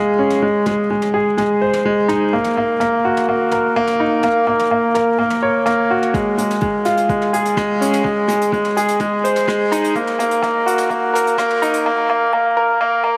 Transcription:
0.00 0.42 G#3 medium
0.00 0.45 F4 medium
0.00 0.45 G#4 medium
0.19 0.42 C#4 medium
0.30 mid tom medium
0.42 0.65 G#3 medium
0.66 0.80 G#3 medium
0.66 mid tom medium
0.90 1.04 G#3 medium
1.02 mid tom medium
1.14 1.37 G#4 medium
1.38 1.60 G#3 medium
1.38 mid tom medium
1.61 1.84 C5 medium
1.73 mid tom medium
1.86 1.99 G#3 medium
2.08 2.32 D#4 medium
2.08 mid tom medium
2.33 2.56 A#3 medium
2.44 mid tom medium
2.57 2.71 A#3 medium
2.80 2.94 A#3 medium
2.80 mid tom medium
3.05 3.27 F#4 medium
3.17 mid tom medium
3.29 3.51 A#3 medium
3.51 3.75 A#4 medium
3.51 mid tom medium
3.76 3.90 A#3 loud
3.87 mid tom medium
4.00 4.23 D#4 medium
4.23 4.46 A#3 medium
4.23 mid tom medium
4.47 4.61 A#3 medium
4.60 mid tom medium
4.71 4.85 A#3 medium
4.95 5.18 A#4 medium
4.95 mid tom medium
5.19 5.41 A#3 medium
5.30 mid tom medium
5.43 5.65 C#5 medium
5.66 5.80 A#3 medium
5.66 mid tom medium
5.90 6.13 F#4 medium
6.03 mid tom medium
6.14 6.36 G#3 medium
6.14 kick loud
6.14 closed hi-hat soft
6.14 mid tom medium
6.38 6.51 G#3 medium
6.38 closed hi-hat medium
6.50 closed hi-hat soft
6.50 mid tom medium
6.61 6.75 G#3 medium
6.61 kick medium
6.61 closed hi-hat soft
6.85 7.08 F4 medium
6.85 closed hi-hat medium
6.85 mid tom medium
6.97 closed hi-hat medium
7.09 7.32 G#3 medium
7.09 kick loud
7.09 closed hi-hat soft
7.22 mid tom medium
7.33 7.56 G#4 medium
7.33 closed hi-hat medium
7.45 closed hi-hat medium
7.57 7.71 G#3 loud
7.57 kick medium
7.57 cross-stick medium
7.57 closed hi-hat soft
7.57 mid tom medium
7.81 8.04 C#4 medium
7.81 closed hi-hat medium
7.93 closed hi-hat medium
7.93 mid tom medium
8.04 8.27 G#3 medium
8.04 kick loud
8.04 closed hi-hat soft
8.28 8.42 G#3 medium
8.28 closed hi-hat medium
8.28 mid tom medium
8.41 closed hi-hat medium
8.52 8.66 G#3 medium
8.52 kick loud
8.52 closed hi-hat soft
8.65 mid tom medium
8.77 8.99 G#4 medium
8.77 closed hi-hat medium
8.88 closed hi-hat medium
9.00 9.23 G#3 medium
9.00 kick medium
9.00 closed hi-hat soft
9.00 mid tom medium
9.24 9.47 C5 medium
9.24 closed hi-hat medium
9.36 closed hi-hat medium
9.36 mid tom medium
9.48 9.61 G#3 medium
9.48 kick loud
9.48 cross-stick medium
9.48 closed hi-hat soft
9.72 9.94 D#4 medium
9.72 closed hi-hat medium
9.72 mid tom medium
9.84 closed hi-hat medium
9.95 10.18 A#3 medium
9.95 kick loud
9.95 closed hi-hat soft
10.07 mid tom medium
10.19 10.33 A#3 medium
10.19 closed hi-hat medium
10.31 closed hi-hat medium
10.43 10.56 A#3 medium
10.43 kick medium
10.43 closed hi-hat soft
10.43 mid tom medium
10.66 10.89 F#4 medium
10.66 closed hi-hat medium
10.78 closed hi-hat medium
10.78 mid tom medium
10.90 11.13 A#3 medium
10.90 kick medium
10.90 closed hi-hat soft
11.14 11.37 A#4 medium
11.14 closed hi-hat medium
11.14 mid tom medium
11.27 closed hi-hat medium
11.38 11.52 A#3 medium
11.38 kick loud
11.38 cross-stick medium
11.38 closed hi-hat soft
11.50 mid tom medium
11.62 11.85 D#4 medium
11.62 closed hi-hat medium
11.74 closed hi-hat medium
11.86 12.08 A#3 medium
12.10 12.23 A#3 medium
12.33 12.47 A#3 medium
12.57 12.80 A#4 medium
12.81 13.02 A#3 medium
13.04 13.17 A#3 medium

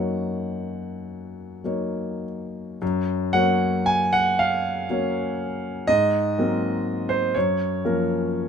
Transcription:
0.00 2.82 F#2 soft
0.00 1.60 F#3 soft
0.00 1.61 A#3 soft
0.00 1.61 D#4 soft
0.00 1.61 C#5 soft
0.00 2.23 F#5 medium
1.64 2.77 F#3 soft
1.64 2.77 A#3 soft
1.64 2.78 D#4 soft
1.64 2.78 C#5 soft
2.82 3.33 F#2 medium
3.33 4.85 F#3 medium
3.33 4.85 A#3 soft
3.33 4.85 C#4 soft
3.33 4.85 C#5 soft
3.33 3.86 F#5 loud
3.86 4.12 G#5 medium
4.13 4.38 F#5 loud
4.39 5.88 F5 medium
4.90 5.85 F#3 soft
4.90 5.85 A#3 soft
4.90 5.85 C#4 soft
4.90 5.85 C#5 soft
5.87 6.36 G#2 medium
5.87 7.10 D#5 loud
6.38 7.31 F#3 soft
6.38 7.32 A#3 soft
6.38 7.32 C4 soft
6.38 7.32 A#4 soft
7.09 7.34 C5 medium
7.34 7.83 F#2 medium
7.34 8.48 C#5 medium
7.85 8.48 F3 soft
7.85 8.48 A#3 soft
7.85 8.48 C#4 soft
7.85 8.48 A#4 soft

